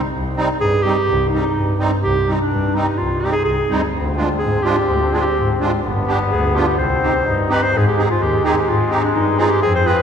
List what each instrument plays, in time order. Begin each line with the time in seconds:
Already playing: double bass C2
0.13 double bass C2
0.36 accordion G3 C4 D#4
0.61 double bass G2, clarinet G#4
0.82 accordion G3 C4 D#4, clarinet G4
1.09 double bass C2
1.29 accordion G3 C4, clarinet D#4
1.34 accordion D#4
1.43 clarinet D#4
1.56 double bass G2
1.79 accordion G3 C4 D#4
2.02 double bass C2, clarinet G4
2.27 accordion G3 C4 D#4
2.33 clarinet D#4
2.41 clarinet D4
2.51 double bass G2
2.74 accordion G3 C4 D#4, clarinet D#4
2.98 double bass C2, clarinet F4
3.21 accordion G3 C4 D#4, clarinet G4
3.32 clarinet G#4
3.45 double bass C2, clarinet G#4
3.69 double bass D2, accordion G3 C4 D#4
3.94 double bass D2, trombone C4
4.16 accordion G#3 D4 F4
4.39 double bass G#2, clarinet G#4
4.62 accordion G#3 D4 F4, clarinet G4
4.89 double bass D2
5.11 accordion G#3 D4 F4, clarinet G#4
5.21 clarinet G4
5.37 double bass G#2
5.60 accordion G#3 D4 F4
5.84 double bass G1, trombone B3
6.07 accordion B3 D4 G4
6.31 double bass D2, clarinet G#4
6.55 accordion B3 D4 F4, clarinet G4
6.66 clarinet G4
6.78 double bass C2, trombone C4, clarinet C5
7.02 accordion C4 D#4 G4
7.26 double bass G2, trombone D#4
7.49 accordion C4 D#4 G4, clarinet B4
7.63 clarinet C5
7.73 double bass G#2, trombone G#3
7.77 clarinet G#4
7.88 clarinet G4
7.97 accordion C4 D#4 G#4
8.11 clarinet F4
8.21 double bass D#2, clarinet G4
8.43 accordion C4 D#4 G4, clarinet G#4
8.54 clarinet G4 G#4
8.68 double bass G#2, clarinet F4
8.89 accordion C4 D#4 G4, clarinet D#4
9.04 clarinet D4
9.15 double bass G2, clarinet D#4
9.37 accordion C4 D#4 G#4, clarinet F4
9.50 clarinet G4
9.62 double bass F2, trombone C4, clarinet G#4
9.75 clarinet C5
9.85 accordion C4 F4 G#4, clarinet B4